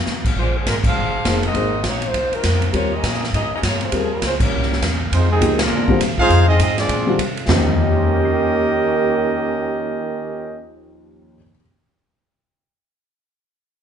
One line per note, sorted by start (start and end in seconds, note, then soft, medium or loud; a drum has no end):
0.06 0.35 D2 medium
0.06 snare medium
0.06 hi-hat pedal medium
0.25 kick medium
0.25 crash medium
0.36 0.65 A#1 medium
0.36 0.54 G#3 medium
0.36 0.54 D4 medium
0.36 0.54 F4 medium
0.36 0.54 C5 medium
0.36 kick soft
0.56 0.67 F3 medium
0.56 0.67 C4 medium
0.56 0.67 D4 medium
0.56 0.67 G#4 medium
0.66 0.95 G#1 medium
0.66 0.76 G#3 medium
0.66 0.76 D4 medium
0.66 0.76 F4 medium
0.66 0.76 A#4 medium
0.66 kick soft
0.66 snare medium
0.66 hi-hat pedal medium
0.66 ride medium
0.84 1.41 D4 medium
0.84 1.41 C5 medium
0.84 1.41 F5 loud
0.84 kick medium
0.84 crash medium
0.88 1.42 G#4 medium
0.95 1.24 G1 medium
1.25 1.54 F1 medium
1.25 1.41 A#3 medium
1.25 1.41 D#4 soft
1.25 1.42 G#4 soft
1.25 1.42 C5 medium
1.25 kick soft
1.25 snare medium
1.25 hi-hat pedal medium
1.25 ride medium
1.43 1.83 C4 medium
1.43 1.84 F#4 medium
1.43 1.83 A#4 medium
1.43 1.83 D#5 medium
1.43 ride soft
1.53 1.83 G#1 medium
1.53 1.70 A#3 medium
1.53 1.71 D#4 medium
1.53 1.71 G#4 medium
1.53 1.71 C5 medium
1.53 kick soft
1.53 ride medium
1.84 2.13 A#1 medium
1.84 kick soft
1.84 snare medium
1.84 hi-hat pedal medium
1.84 ride medium
1.89 2.05 A#3 medium
1.89 2.05 D#4 medium
1.89 2.05 F#4 medium
1.89 2.05 C#5 medium
2.02 ride medium
2.06 2.34 A#3 medium
2.06 2.33 D#4 medium
2.06 2.34 F#4 medium
2.06 2.35 C5 medium
2.14 2.31 C2 medium
2.14 kick soft
2.14 ride medium
2.31 2.75 F#3 medium
2.31 2.75 C4 medium
2.31 2.75 D#4 medium
2.31 2.75 A#4 medium
2.31 muted upright bass stroke soft
2.31 ride soft
2.44 2.73 F2 medium
2.44 kick soft
2.44 snare medium
2.44 hi-hat pedal medium
2.44 ride medium
2.62 ride soft
2.72 3.03 D#2 medium
2.72 2.89 G3 medium
2.72 2.91 A#3 medium
2.72 2.90 C4 medium
2.72 2.90 F4 medium
2.72 2.91 F4 medium
2.72 2.91 G4 medium
2.72 2.90 A#4 medium
2.72 2.91 C#5 medium
2.72 kick soft
2.72 ride medium
2.94 3.23 C#4 medium
2.94 3.23 G4 medium
2.94 3.23 A#4 medium
2.94 3.23 D#5 loud
3.03 3.32 A#2 loud
3.03 kick soft
3.03 snare medium
3.03 hi-hat pedal medium
3.03 ride medium
3.14 snare soft
3.24 snare soft
3.33 3.50 G#2 medium
3.33 3.51 C#4 medium
3.33 3.51 G4 medium
3.33 3.51 A#4 medium
3.33 3.51 D#5 loud
3.33 kick soft
3.33 ride medium
3.51 3.59 A#4 medium
3.51 muted upright bass stroke soft
3.55 3.60 C#4 medium
3.55 3.60 G4 medium
3.55 3.60 D#5 medium
3.63 3.91 G2 medium
3.63 3.77 A#3 medium
3.63 3.77 F4 medium
3.63 3.77 G4 medium
3.63 3.77 C#5 medium
3.63 kick soft
3.63 snare medium
3.63 hi-hat pedal medium
3.63 ride medium
3.80 3.94 G#3 medium
3.80 3.94 C#4 medium
3.80 3.94 F4 medium
3.80 3.83 A#4 medium
3.80 3.94 C5 medium
3.80 ride soft
3.91 4.21 D#2 medium
3.91 4.08 G3 medium
3.91 4.09 C4 medium
3.91 4.09 F4 medium
3.91 4.12 G#4 medium
3.91 4.09 A#4 medium
3.91 kick soft
3.91 ride medium
3.96 4.12 F3 medium
3.96 4.12 A#3 medium
3.96 4.12 C#4 medium
4.13 4.23 G3 medium
4.13 4.23 C#4 medium
4.13 4.23 F4 medium
4.13 4.23 A#4 medium
4.22 4.51 C#2 medium
4.22 4.33 G#3 medium
4.22 4.33 C#4 medium
4.22 4.33 F4 medium
4.22 4.33 C5 medium
4.22 kick soft
4.22 snare medium
4.22 hi-hat pedal medium
4.22 ride medium
4.39 4.95 G3 medium
4.39 4.96 A#3 medium
4.39 4.97 A#3 medium
4.39 4.95 C#4 medium
4.39 4.97 E4 medium
4.39 4.97 C#5 medium
4.39 kick medium
4.39 crash medium
4.43 4.97 G4 medium
4.52 4.81 C2 medium
4.63 snare soft
4.73 snare soft
4.82 5.10 E2 medium
4.82 kick soft
4.82 snare medium
4.82 hi-hat pedal medium
4.82 ride medium
5.12 5.40 F2 medium
5.12 5.29 D#3 medium
5.12 5.29 G#3 medium
5.12 5.30 G#3 medium
5.12 5.29 C4 medium
5.12 5.29 D#4 medium
5.12 5.30 F4 medium
5.12 5.30 C5 medium
5.12 kick soft
5.12 ride medium
5.31 5.58 C3 medium
5.31 5.58 D#3 medium
5.31 5.58 G#3 medium
5.31 5.58 C4 medium
5.31 5.58 D#4 medium
5.31 5.58 G#4 medium
5.41 5.70 C#2 medium
5.41 5.57 F3 medium
5.41 5.58 A#3 medium
5.41 5.58 D#4 medium
5.41 5.58 G4 medium
5.41 kick soft
5.41 hi-hat pedal medium
5.41 ride medium
5.59 6.01 D3 medium
5.59 6.01 F3 medium
5.59 6.02 G#3 medium
5.59 6.01 A#3 medium
5.59 6.02 D4 medium
5.59 6.02 F4 medium
5.59 6.02 A#4 medium
5.59 snare loud
5.59 ride medium
5.71 5.99 D2 medium
5.88 5.99 D3 medium
5.88 5.99 G3 medium
5.88 6.00 C4 medium
5.88 6.00 F4 medium
5.88 kick medium
6.00 6.17 D#2 medium
6.00 kick soft
6.00 snare soft
6.00 hi-hat pedal medium
6.00 ride medium
6.18 6.46 G#3 loud
6.18 6.46 C4 medium
6.18 6.47 D#4 medium
6.18 6.46 F4 medium
6.18 6.47 G#4 loud
6.18 6.47 C5 loud
6.18 6.47 F5 loud
6.18 muted upright bass stroke soft
6.18 kick medium
6.29 6.58 F2 medium
6.29 kick soft
6.29 ride medium
6.47 6.57 G#3 medium
6.47 6.56 C4 medium
6.47 6.60 C4 medium
6.47 6.57 D#4 medium
6.47 6.60 F4 medium
6.47 6.60 G#4 medium
6.47 6.59 D#5 loud
6.57 6.88 G#2 loud
6.57 6.75 G#3 medium
6.57 6.75 C4 medium
6.57 6.75 D#4 medium
6.57 kick soft
6.57 hi-hat pedal medium
6.57 ride medium
6.62 6.78 C4 loud
6.62 6.78 F4 medium
6.62 6.78 G#4 medium
6.62 6.78 D#5 loud
6.76 7.15 F3 medium
6.76 7.15 G#3 medium
6.76 7.16 D4 medium
6.76 7.17 F4 medium
6.76 7.17 G#4 medium
6.76 snare medium
6.76 ride medium
6.80 7.18 C4 medium
6.80 7.17 D5 medium
6.89 7.18 A#2 medium
6.89 kick soft
6.89 ride medium
7.07 7.18 D3 medium
7.07 7.18 G3 medium
7.07 7.18 C4 medium
7.07 7.18 F4 medium
7.18 7.46 C3 medium
7.18 kick soft
7.18 hi-hat pedal medium
7.18 ride medium
7.37 ride soft
7.47 11.31 D#2 loud
7.47 11.35 D#2 medium
7.47 10.61 D#3 medium
7.47 11.35 D#3 medium
7.47 11.36 F3 medium
7.47 10.61 A#3 medium
7.47 10.61 C#4 loud
7.47 10.62 C#4 medium
7.47 11.36 C#4 medium
7.47 10.61 G4 loud
7.47 11.36 G4 medium
7.47 10.62 G4 medium
7.47 10.62 A#4 medium
7.47 11.36 C5 medium
7.47 10.62 D#5 medium
7.47 snare loud
7.47 floor tom loud
7.80 11.32 D#5 soft
7.87 11.36 G5 soft
7.96 11.40 C6 soft
8.04 11.44 D#6 soft
8.15 11.50 G6 soft
8.25 11.55 C7 soft
8.36 11.61 D#7 soft